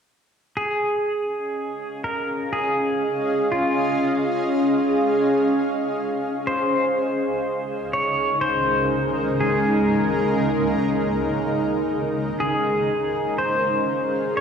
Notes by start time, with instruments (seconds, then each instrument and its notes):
0.57 ambient pad C#4, pedal steel guitar G#4
0.76 ambient pad G#4
0.93 ambient pad D#5
0.98 ambient pad F5
2.04 pedal steel guitar A#4
2.53 pedal steel guitar G#4
3.52 pedal steel guitar F4
6.47 ambient pad C#3, pedal steel guitar C5
6.76 ambient pad G#3
6.86 ambient pad D#4
7.28 ambient pad A#4
7.93 pedal steel guitar C#5
8.41 pedal steel guitar C5
9.40 pedal steel guitar G#4
12.40 ambient pad C#4, pedal steel guitar G#4
12.57 ambient pad G#4
12.82 ambient pad F5
12.93 ambient pad D#5
13.38 pedal steel guitar C5
14.37 pedal steel guitar C#5